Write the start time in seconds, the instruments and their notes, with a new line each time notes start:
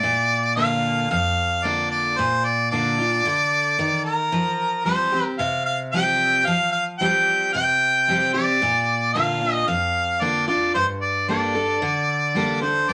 Already playing: harmonica D5
0.03 steel-string acoustic guitar A#2
0.55 steel-string acoustic guitar D3 A#3 D4 F4, harmonica F5
1.10 steel-string acoustic guitar F2, harmonica F5
1.64 steel-string acoustic guitar D3 A#3 D4 F4, harmonica D5
1.91 harmonica D5
2.17 steel-string acoustic guitar A#2, harmonica C5
2.44 harmonica D5
2.71 steel-string acoustic guitar D3 A#3 D4 F4, harmonica D5
2.99 steel-string acoustic guitar D4 F4
3.25 steel-string acoustic guitar D3
3.79 steel-string acoustic guitar D#3
4.04 harmonica A#4
4.32 steel-string acoustic guitar F3
4.85 steel-string acoustic guitar F3 G3 C4 G4, harmonica C5
5.12 steel-string acoustic guitar C4 G4
5.38 steel-string acoustic guitar C3, harmonica F5
5.65 harmonica F5
5.92 steel-string acoustic guitar F3 G3 C4 G4, harmonica G5
6.46 steel-string acoustic guitar F3, harmonica F5
6.72 harmonica F5
6.99 steel-string acoustic guitar F3 G3 C4 G4, harmonica G5
7.53 steel-string acoustic guitar C3, harmonica G5
8.08 steel-string acoustic guitar F3 G3 C4 G4
8.33 steel-string acoustic guitar C4 G4, harmonica D5
8.62 steel-string acoustic guitar A#2
9.13 steel-string acoustic guitar D3 A#3 D4 F4, harmonica F5
9.41 steel-string acoustic guitar D4 F4
9.67 steel-string acoustic guitar F2, harmonica F5
10.21 steel-string acoustic guitar D3 A#3 D4 F4, harmonica D5
10.47 steel-string acoustic guitar D4 F4, harmonica D5
10.74 steel-string acoustic guitar G2, harmonica C5
11.01 harmonica D5
11.28 steel-string acoustic guitar G3 A#3 D4 A4, harmonica D5
11.55 steel-string acoustic guitar D4 A4
11.82 steel-string acoustic guitar D3
12.35 steel-string acoustic guitar G3 A#3 D4 A4
12.61 steel-string acoustic guitar D4 A4, harmonica C5
12.89 steel-string acoustic guitar G2, harmonica D5